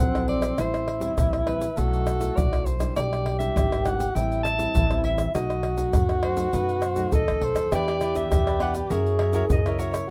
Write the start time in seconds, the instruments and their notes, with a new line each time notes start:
Already playing: tenor saxophone C4, soprano saxophone F#5
0.00 upright bass A#1, nylon-string guitar F#3
0.13 nylon-string guitar C4 E4 A4, pandeiro, tamborim, shaker
0.28 soprano saxophone D5, pandeiro
0.42 pandeiro, tamborim, shaker, surdo
0.58 upright bass A1, nylon-string guitar A2 G3 C4 E4, tenor saxophone E4, soprano saxophone C5, pandeiro, tamborim, shaker, surdo
0.74 pandeiro, tamborim, shaker
0.88 pandeiro, tamborim
1.00 nylon-string guitar G3 C4 E4, pandeiro, shaker, surdo
1.17 upright bass A#1, nylon-string guitar E3, pandeiro, tamborim, shaker, surdo
1.33 pandeiro, tamborim, shaker
1.46 nylon-string guitar G3 C4 E4, soprano saxophone B4, pandeiro, tamborim, surdo
1.61 pandeiro, shaker, surdo
1.77 upright bass B1, nylon-string guitar B2 F#3 A3 E4, tenor saxophone F#4, soprano saxophone A4, pandeiro, shaker, surdo
1.93 pandeiro, shaker
2.07 pandeiro, tamborim, shaker
2.19 nylon-string guitar F#3 A3 E4, pandeiro, shaker, surdo
2.36 upright bass B1, nylon-string guitar F#2, soprano saxophone D5, pandeiro, shaker, surdo
2.52 nylon-string guitar F#3 A3 E4, pandeiro, tamborim, shaker
2.65 soprano saxophone C5, pandeiro, shaker
2.80 nylon-string guitar G3 D4 E4, pandeiro, tamborim, shaker, surdo
2.96 upright bass B1, nylon-string guitar B2, tenor saxophone G4, soprano saxophone D5, pandeiro, tamborim, shaker, surdo
3.13 pandeiro, tamborim, shaker
3.26 pandeiro, tamborim
3.39 nylon-string guitar G3 D4 E4, soprano saxophone E5, pandeiro, shaker, surdo
3.56 upright bass G#1, nylon-string guitar B2, pandeiro, tamborim, shaker, surdo
3.72 pandeiro, tamborim, shaker
3.85 nylon-string guitar G3 D4 E4, soprano saxophone F#5, pandeiro, tamborim, shaker
4.00 pandeiro, shaker, surdo
4.15 upright bass A1, nylon-string guitar A2 G3 C4 E4, tenor saxophone E4, soprano saxophone G5, pandeiro, shaker, surdo
4.32 pandeiro, shaker
4.43 soprano saxophone A5, pandeiro, tamborim, shaker
4.58 nylon-string guitar G3 C4 E4, pandeiro, shaker, surdo
4.75 upright bass A1, nylon-string guitar E3, pandeiro, shaker, surdo
4.90 nylon-string guitar G3 C4 E4, pandeiro, tamborim, shaker
5.04 soprano saxophone E5, pandeiro
5.18 pandeiro, tamborim, shaker, surdo
5.34 upright bass B1, nylon-string guitar B2 F#3 A3 D#4, tenor saxophone F#4, soprano saxophone D#5, pandeiro, tamborim, shaker, surdo
5.50 pandeiro, tamborim, shaker
5.63 pandeiro, tamborim
5.78 nylon-string guitar F#3 A3 D#4, pandeiro, shaker, surdo
5.93 nylon-string guitar F#2, upright bass F#2, pandeiro, tamborim, shaker, surdo
6.09 nylon-string guitar F#3 A3 D#4, pandeiro, tamborim, shaker
6.23 soprano saxophone C5, pandeiro, tamborim
6.37 nylon-string guitar F#3 A3 D#4, pandeiro, shaker, surdo
6.53 upright bass F#2, nylon-string guitar B2 F#3 A3 D#4, soprano saxophone B4, pandeiro, shaker, surdo
6.69 pandeiro, shaker
6.82 soprano saxophone C5, pandeiro, tamborim, shaker
6.96 nylon-string guitar F#3 A3 D#4, pandeiro, shaker, surdo
7.12 upright bass D#2, nylon-string guitar F#2, tenor saxophone A4, soprano saxophone D#5, pandeiro, shaker, surdo
7.28 upright bass A1, nylon-string guitar F#3 A3 D#4, pandeiro, tamborim, shaker
7.41 upright bass B1, soprano saxophone C5, pandeiro
7.55 upright bass D#2, pandeiro, tamborim, shaker, surdo
7.72 upright bass E2, nylon-string guitar E3 B3 D4 G4, cavaquinho E4 G4 B4 D5, tenor saxophone G4, soprano saxophone D5, pandeiro, tamborim, shaker, surdo
7.88 cavaquinho E4 G4 B4 D5, pandeiro, tamborim, shaker
8.01 cavaquinho E4 G4 B4 D5, pandeiro, tamborim, shaker
8.15 nylon-string guitar B3 D4 G4, soprano saxophone E5, pandeiro, shaker, surdo
8.30 upright bass E2, nylon-string guitar B2, tenor saxophone G4, pandeiro, tamborim, shaker, surdo
8.47 cavaquinho G4 B4 D5, pandeiro, tamborim, shaker
8.60 nylon-string guitar B3 D4 G4, cavaquinho E4 G4 B4 D5, soprano saxophone F#5, pandeiro, tamborim
8.74 cavaquinho G4 B4 D5, pandeiro, shaker, surdo
8.90 upright bass F#2, nylon-string guitar F#3 C#4 E4 A#4, cavaquinho F#4 A#4 C#5 E5, tenor saxophone G#4, pandeiro, shaker, surdo
9.06 pandeiro, shaker
9.19 cavaquinho F#4 A#4 C#5 E5, pandeiro, tamborim
9.33 nylon-string guitar C#4 E4 A#4, cavaquinho F#4 A#4 C#5 E5, pandeiro, shaker, surdo
9.50 upright bass F#2, nylon-string guitar C#3, soprano saxophone D#5, pandeiro, shaker, surdo
9.66 nylon-string guitar C#4 E4 A#4, cavaquinho A#4 C#5 E5, pandeiro, tamborim, shaker
9.79 cavaquinho F#4 A#4 C#5 E5, soprano saxophone C#5, pandeiro, shaker
9.91 cavaquinho A#4 C#5 E5, pandeiro, tamborim, shaker, surdo